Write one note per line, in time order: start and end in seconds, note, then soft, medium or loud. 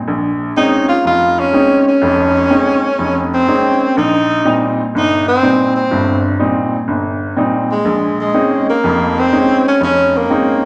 0.08 0.50 A#1 medium
0.57 0.91 G#3 soft
0.57 0.91 A#3 soft
0.57 0.91 C4 soft
0.57 0.91 C#4 soft
0.57 0.87 D#4 medium
0.57 0.91 D#4 medium
0.89 1.03 F4 medium
1.05 1.47 F1 medium
1.05 1.41 F4 medium
1.39 1.87 C#4 medium
1.52 1.87 G#3 medium
1.52 1.87 A#3 soft
1.52 1.88 C4 soft
1.52 1.88 C#4 soft
1.52 1.88 D#4 medium
1.88 3.29 C#4 medium
2.02 2.44 F1 medium
2.02 2.44 F2 medium
2.50 2.85 G#3 soft
2.50 2.85 A#3 soft
2.50 2.85 C4 soft
2.50 2.85 C#4 soft
2.50 2.85 D#4 medium
2.99 3.41 F1 medium
3.34 3.93 C4 medium
3.48 3.82 G#3 soft
3.48 3.82 A#3 soft
3.48 3.82 C4 soft
3.48 3.82 C#4 soft
3.48 3.83 D#4 medium
3.97 4.39 A#1 medium
3.97 4.71 D#4 medium
4.45 4.80 A#2 medium
4.45 4.80 G3 soft
4.45 4.80 C4 soft
4.45 4.80 D#4 medium
4.95 5.37 G1 medium
4.95 5.26 D#4 medium
5.29 5.73 C4 medium
5.42 5.77 A#2 soft
5.42 5.77 G3 soft
5.42 5.77 C4 soft
5.42 5.77 D#4 medium
5.76 6.36 C4 medium
5.91 6.34 G1 medium
5.91 6.33 G2 medium
6.40 6.74 A#2 soft
6.40 6.75 G3 soft
6.40 6.75 C4 soft
6.40 6.74 D#4 medium
6.88 7.31 G1 medium
7.37 7.71 A#2 soft
7.37 7.72 G3 soft
7.37 7.71 C4 soft
7.37 7.72 D#4 medium
7.72 8.16 G#3 medium
7.85 8.28 A#1 medium
8.20 8.65 G#3 medium
8.34 8.69 G#3 soft
8.34 8.69 A#3 soft
8.34 8.69 C4 soft
8.34 8.69 C#4 soft
8.34 8.69 D#4 medium
8.70 9.21 A#3 medium
8.84 9.26 F1 medium
8.84 9.26 F2 medium
9.19 9.66 C4 medium
9.33 9.67 G#3 soft
9.33 9.67 A#3 soft
9.33 9.67 C4 soft
9.33 9.67 C#4 soft
9.33 9.67 D#4 medium
9.68 9.81 C#4 medium
9.80 10.23 F1 medium
9.80 10.19 C#4 medium
10.18 10.65 A#3 medium
10.30 10.64 G#3 medium
10.30 10.64 A#3 soft
10.30 10.64 C4 soft
10.30 10.65 C#4 soft
10.30 10.65 D#4 medium